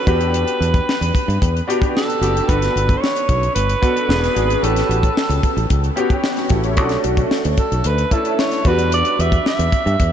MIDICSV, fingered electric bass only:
0, 0, Header, 1, 2, 480
1, 0, Start_track
1, 0, Tempo, 536673
1, 299, Time_signature, 4, 2, 24, 8
1, 9055, End_track
2, 0, Start_track
2, 0, Title_t, "Fingered electric bass"
2, 0, Program_c, 0, 33
2, 61, Note_on_c, 0, 40, 87
2, 387, Note_off_c, 0, 40, 0
2, 541, Note_on_c, 0, 40, 80
2, 704, Note_off_c, 0, 40, 0
2, 905, Note_on_c, 0, 40, 79
2, 985, Note_off_c, 0, 40, 0
2, 1146, Note_on_c, 0, 43, 87
2, 1226, Note_off_c, 0, 43, 0
2, 1269, Note_on_c, 0, 40, 70
2, 1429, Note_off_c, 0, 40, 0
2, 1979, Note_on_c, 0, 30, 73
2, 2143, Note_off_c, 0, 30, 0
2, 2227, Note_on_c, 0, 31, 91
2, 2388, Note_off_c, 0, 31, 0
2, 2466, Note_on_c, 0, 31, 78
2, 2628, Note_off_c, 0, 31, 0
2, 2942, Note_on_c, 0, 35, 69
2, 3105, Note_off_c, 0, 35, 0
2, 3181, Note_on_c, 0, 31, 81
2, 3344, Note_off_c, 0, 31, 0
2, 3656, Note_on_c, 0, 28, 85
2, 3822, Note_off_c, 0, 28, 0
2, 3901, Note_on_c, 0, 32, 73
2, 4065, Note_off_c, 0, 32, 0
2, 4140, Note_on_c, 0, 33, 87
2, 4304, Note_off_c, 0, 33, 0
2, 4375, Note_on_c, 0, 33, 79
2, 4540, Note_off_c, 0, 33, 0
2, 4734, Note_on_c, 0, 37, 73
2, 4818, Note_off_c, 0, 37, 0
2, 4978, Note_on_c, 0, 33, 84
2, 5061, Note_off_c, 0, 33, 0
2, 5103, Note_on_c, 0, 37, 82
2, 5265, Note_off_c, 0, 37, 0
2, 5816, Note_on_c, 0, 33, 71
2, 6058, Note_off_c, 0, 33, 0
2, 6058, Note_on_c, 0, 35, 92
2, 6222, Note_off_c, 0, 35, 0
2, 6300, Note_on_c, 0, 35, 81
2, 6463, Note_off_c, 0, 35, 0
2, 6664, Note_on_c, 0, 38, 86
2, 6744, Note_off_c, 0, 38, 0
2, 6902, Note_on_c, 0, 35, 78
2, 6983, Note_off_c, 0, 35, 0
2, 7020, Note_on_c, 0, 38, 85
2, 7183, Note_off_c, 0, 38, 0
2, 7737, Note_on_c, 0, 40, 82
2, 8064, Note_off_c, 0, 40, 0
2, 8219, Note_on_c, 0, 40, 83
2, 8382, Note_off_c, 0, 40, 0
2, 8577, Note_on_c, 0, 40, 81
2, 8659, Note_off_c, 0, 40, 0
2, 8820, Note_on_c, 0, 43, 93
2, 8901, Note_off_c, 0, 43, 0
2, 8944, Note_on_c, 0, 40, 76
2, 9055, Note_off_c, 0, 40, 0
2, 9055, End_track
0, 0, End_of_file